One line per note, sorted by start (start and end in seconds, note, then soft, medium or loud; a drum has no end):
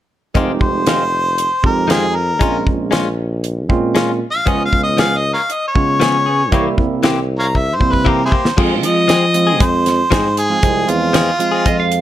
0.34 0.57 F1 medium
0.34 0.50 D#3 medium
0.34 1.00 G#3 medium
0.34 0.51 G#3 medium
0.34 1.00 C4 medium
0.34 0.51 C4 medium
0.34 1.01 D#4 medium
0.34 0.51 F4 medium
0.34 1.01 G4 medium
0.34 kick medium
0.34 closed hi-hat medium
0.61 1.47 F1 medium
0.61 1.61 C5 medium
0.61 kick medium
0.87 1.02 D#3 medium
0.87 1.03 G#3 medium
0.87 1.03 C4 medium
0.87 1.03 F4 medium
0.87 snare loud
0.87 closed hi-hat medium
1.38 closed hi-hat medium
1.63 2.42 F2 medium
1.63 2.13 G#3 medium
1.63 2.13 C4 medium
1.63 2.13 D#4 medium
1.63 2.13 G4 medium
1.63 1.90 A#4 medium
1.63 kick medium
1.88 2.04 D#3 medium
1.88 2.05 G#3 medium
1.88 2.05 C4 medium
1.88 2.05 F4 medium
1.88 2.17 G#4 medium
1.88 snare medium
1.88 closed hi-hat medium
2.16 2.65 A#4 medium
2.39 2.62 A#1 medium
2.39 2.55 G#3 medium
2.39 3.06 G#3 medium
2.39 3.06 C4 medium
2.39 3.07 C#4 medium
2.39 2.56 C#4 medium
2.39 3.07 F4 medium
2.39 2.57 F4 medium
2.39 kick medium
2.39 closed hi-hat medium
2.67 3.71 A#1 medium
2.67 kick medium
2.91 3.07 G#3 medium
2.91 3.07 C#4 medium
2.91 3.08 F4 medium
2.91 snare medium
2.91 closed hi-hat medium
3.44 closed hi-hat soft
3.69 4.23 A#2 medium
3.69 4.18 G#3 medium
3.69 4.18 C4 medium
3.69 4.19 C#4 medium
3.69 4.19 F4 medium
3.69 kick medium
3.95 4.10 G#3 medium
3.95 4.11 C#4 medium
3.95 4.11 F4 medium
3.95 snare medium
3.95 closed hi-hat soft
4.31 4.40 A#1 soft
4.31 4.50 F5 medium
4.46 4.68 C#2 medium
4.46 4.61 F3 medium
4.46 5.12 G#3 medium
4.46 4.62 B3 medium
4.46 5.12 B3 medium
4.46 5.12 C#4 medium
4.46 4.62 C#4 medium
4.46 5.12 F4 medium
4.46 4.63 G#4 medium
4.46 4.64 D#5 medium
4.46 kick medium
4.46 closed hi-hat soft
4.65 4.81 F5 medium
4.73 5.36 C#2 medium
4.73 kick medium
4.83 4.99 D#5 medium
4.97 5.13 F3 medium
4.97 5.14 B3 medium
4.97 5.14 C#4 medium
4.97 5.14 G#4 medium
4.97 5.19 F5 medium
4.97 snare loud
4.97 closed hi-hat medium
5.17 5.33 D#5 medium
5.34 5.42 A#4 soft
5.34 5.41 C#5 soft
5.34 5.53 F5 medium
5.50 5.67 D#5 medium
5.50 closed hi-hat medium
5.68 6.67 C#5 medium
5.75 6.54 C#3 medium
5.75 6.24 G#3 medium
5.75 6.24 B3 medium
5.75 6.24 C#4 medium
5.75 6.25 F4 medium
5.75 kick medium
6.00 6.16 F3 medium
6.00 6.16 B3 medium
6.00 6.17 C#4 medium
6.00 6.17 G#4 medium
6.00 snare medium
6.00 closed hi-hat medium
6.26 6.43 B3 soft
6.26 6.42 C#4 soft
6.26 6.42 G#4 soft
6.51 6.74 C2 medium
6.51 6.68 E3 medium
6.51 7.17 G3 medium
6.51 7.18 A#3 medium
6.51 6.68 A#3 medium
6.51 7.18 C4 medium
6.51 6.68 C4 medium
6.51 7.18 E4 medium
6.51 6.68 G4 medium
6.51 kick medium
6.51 closed hi-hat medium
6.78 7.82 C2 medium
6.78 kick medium
7.03 7.19 E3 medium
7.03 7.19 A#3 medium
7.03 7.19 C4 medium
7.03 7.20 G4 medium
7.03 snare medium
7.03 closed hi-hat medium
7.39 7.47 C#5 medium
7.39 7.46 F5 medium
7.39 7.59 A#5 medium
7.55 7.76 E5 medium
7.55 kick soft
7.75 7.94 C5 medium
7.80 8.34 C3 medium
7.80 8.29 G3 medium
7.80 8.30 A#3 medium
7.80 8.30 C4 medium
7.80 8.30 E4 medium
7.80 kick medium
7.92 8.11 B4 medium
7.92 kick soft
8.05 8.21 E3 medium
8.05 8.21 A#3 medium
8.05 8.22 C4 medium
8.05 8.22 G4 medium
8.05 kick medium
8.09 8.24 A#4 medium
8.26 8.34 E4 soft
8.26 8.32 G#4 soft
8.26 8.58 C5 medium
8.30 8.48 A#3 soft
8.30 8.48 C4 soft
8.30 8.47 G4 soft
8.30 kick medium
8.45 8.52 C2 soft
8.45 snare medium
8.57 8.85 F2 medium
8.57 8.73 F3 medium
8.57 9.07 F3 medium
8.57 9.07 G#3 medium
8.57 8.73 G#3 medium
8.57 9.07 C4 medium
8.57 8.73 C4 medium
8.57 9.07 F4 medium
8.57 8.74 G#4 medium
8.57 kick loud
8.57 crash medium
8.83 9.62 F3 medium
8.83 9.63 D#5 medium
8.83 closed hi-hat medium
9.08 9.24 F3 medium
9.08 9.25 G#3 medium
9.08 9.25 C4 medium
9.08 9.25 G#4 medium
9.08 snare medium
9.08 closed hi-hat medium
9.34 10.00 F3 medium
9.34 10.00 G#3 medium
9.34 10.01 C4 medium
9.34 10.01 F4 medium
9.34 closed hi-hat medium
9.47 9.64 G#3 soft
9.47 9.63 C4 soft
9.47 9.62 G#4 soft
9.60 10.04 F2 loud
9.60 10.36 C5 medium
9.60 kick loud
9.60 closed hi-hat medium
9.86 snare soft
9.86 closed hi-hat medium
10.11 10.55 G#2 medium
10.11 10.27 F3 medium
10.11 10.27 G#3 medium
10.11 10.27 C4 medium
10.11 10.27 G#4 medium
10.11 kick medium
10.11 snare loud
10.11 closed hi-hat medium
10.37 10.92 G#4 medium
10.37 closed hi-hat medium
10.50 10.58 F3 medium
10.50 10.58 G#3 medium
10.50 10.59 C4 medium
10.50 10.59 F4 medium
10.63 10.85 C2 medium
10.63 11.12 F3 medium
10.63 11.12 G#3 medium
10.63 11.12 C4 medium
10.63 11.13 G#4 medium
10.63 kick loud
10.63 closed hi-hat medium
10.88 11.30 E2 medium
10.88 11.89 F4 loud
10.88 closed hi-hat medium
11.13 11.29 F3 medium
11.13 11.30 G#3 medium
11.13 11.30 C4 medium
11.13 11.30 G#4 medium
11.13 snare loud
11.13 closed hi-hat medium
11.39 12.01 F3 medium
11.39 12.01 G#3 medium
11.39 12.01 C4 medium
11.39 12.01 F4 medium
11.39 closed hi-hat medium
11.52 11.69 G#3 soft
11.52 11.68 C4 soft
11.52 11.68 G#4 medium
11.66 12.01 F2 loud
11.66 11.78 D#5 medium
11.66 kick medium
11.66 closed hi-hat medium
11.80 12.01 F5 medium
11.92 closed hi-hat medium